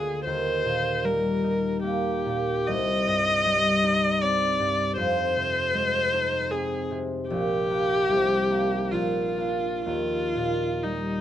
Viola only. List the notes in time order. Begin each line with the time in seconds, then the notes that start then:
Already playing: G#4
0.25 C5
1.05 A#4
1.84 G4
2.68 D#5
4.22 D5
4.97 C5
6.51 G#4
7.29 G4
8.91 F4
9.85 F4
10.84 D#4